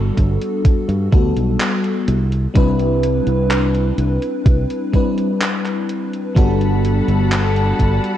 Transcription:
Already playing: G3 B3 D4 F#4 A4
0.17 G1, kick, closed hi-hat
0.41 closed hi-hat
0.65 muted fingered electric bass stroke, kick, closed hi-hat
0.89 G2, closed hi-hat
1.12 D2 G3 B3 D4 F#4 A4, kick, closed hi-hat
1.36 B1, closed hi-hat
1.60 clap, closed hi-hat
1.84 closed hi-hat
2.08 C2, closed hi-hat
2.32 closed hi-hat
2.54 C2 G3 C4 D4 E4 B4, kick, closed hi-hat
2.79 closed hi-hat
3.03 closed hi-hat
3.27 C2, closed hi-hat
3.51 clap, closed hi-hat
3.75 closed hi-hat
3.98 C2, closed hi-hat
4.22 closed hi-hat
4.46 C2, kick, closed hi-hat
4.70 closed hi-hat
4.92 G3 C4 D4 E4 B4, kick, closed hi-hat
5.18 closed hi-hat
5.42 clap, closed hi-hat
5.66 clap, closed hi-hat
5.89 closed hi-hat
6.13 closed hi-hat
6.35 G1 G3 B3 D4 F#4 A4 F#5 A5 B5, kick, closed hi-hat
6.61 closed hi-hat
6.85 closed hi-hat
7.08 G1, closed hi-hat
7.32 clap, closed hi-hat
7.56 closed hi-hat
7.79 G1, kick, closed hi-hat
8.04 closed hi-hat

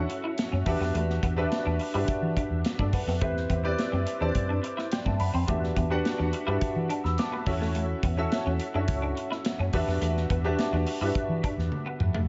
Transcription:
Already playing: C#4 E4 F#4 A4 E5 F#5
0.09 muted clean electric guitar stroke, closed hi-hat
0.24 E4
0.38 snare, closed hi-hat
0.52 F#2 C#4
0.66 E2 D4 F#4 G4 B4 E5, muted clean electric guitar stroke, kick, open hi-hat
0.81 F2 B3, snare
0.94 E2 A3, closed hi-hat
1.10 snare
1.23 E2 B3, kick, closed hi-hat
1.37 D4 F#4 G4 B4 E5, muted clean electric guitar stroke
1.52 snare, closed hi-hat
1.66 E2 D4
1.79 muted clean electric guitar stroke, open hi-hat
1.94 G2 D4 E4 F#4 G4 B4 E5
2.08 muted fingered electric bass stroke, kick, closed hi-hat
2.22 E3
2.37 D4, kick, closed hi-hat
2.50 E2
2.65 snare, closed hi-hat
2.79 G2 D4 A4 D5, kick
2.93 F#2 B4 F#5, muted clean electric guitar stroke, kick, open hi-hat
3.07 F2 B3 B4 E5, snare
3.21 E2 A3 C4 E4 G4 B4 E5, kick, closed hi-hat
3.37 snare
3.50 E2 B3, kick, closed hi-hat
3.64 C4 E4 G4 B4 D5, muted clean electric guitar stroke
3.79 snare, closed hi-hat
3.92 F#2 C4
4.06 muted clean electric guitar stroke, closed hi-hat
4.21 E2 C4 D4 E4 G4 B4 D5
4.35 F#2, kick, closed hi-hat
4.49 D4
4.63 muted clean electric guitar stroke, closed hi-hat
4.77 E4, snare
4.92 D5 G5, snare, closed hi-hat
5.06 G2 C4 E5 A5, kick
5.20 F#2 F#5 B5, muted clean electric guitar stroke, open hi-hat
5.34 F2 C4 G5 C6
5.48 E2 A3 D4 F#4 G4 B4 E5, kick, closed hi-hat
5.63 snare
5.76 E2 B3, kick, closed hi-hat
5.90 D4 F#4 G4 B4 F#5, muted clean electric guitar stroke
6.05 snare, closed hi-hat
6.18 E2 D4
6.33 muted clean electric guitar stroke, closed hi-hat
6.47 G2 D4 E4 F#4 G4 B4 E5
6.61 muted fingered electric bass stroke, kick, closed hi-hat
6.76 E3
6.89 D4, closed hi-hat
7.04 E2 B5 E6, snare
7.18 A5 D6, snare, closed hi-hat
7.32 B3 F#5 B5
7.46 E2 C#4 E4 F#4 A4 E5, muted clean electric guitar stroke, kick, open hi-hat
7.61 A3, snare
7.75 A3, closed hi-hat
8.03 E2 B3, kick, closed hi-hat
8.17 C#4 E4 F#4 A4 E5, muted clean electric guitar stroke
8.32 snare, closed hi-hat
8.46 E2 C#4
8.60 muted clean electric guitar stroke, closed hi-hat
8.74 F#2 C#4 D4 E4 F#4 A4 E5
8.88 C#2, kick, closed hi-hat
9.02 D4
9.17 muted clean electric guitar stroke, closed hi-hat
9.31 E4, snare
9.45 snare, closed hi-hat
9.59 F#2 C#4
9.73 E2 D4 F#4 G4 B4 E5, muted clean electric guitar stroke, kick, open hi-hat
9.88 F2 B3, snare
10.01 E2 A3, closed hi-hat
10.17 snare
10.30 E2 B3, kick, closed hi-hat
10.44 D4 F#4 G4 B4 E5, muted clean electric guitar stroke
10.59 snare, closed hi-hat
10.73 E2 D4
10.87 muted clean electric guitar stroke, open hi-hat
11.01 G2 D4 E4 F#4 G4 B4 E5
11.15 muted fingered electric bass stroke, kick, closed hi-hat
11.29 E3
11.43 D4, kick, closed hi-hat
11.58 E2, snare
11.72 high tom
11.86 B3
12.00 F2, muted clean electric guitar stroke, mid tom
12.14 A3, floor tom

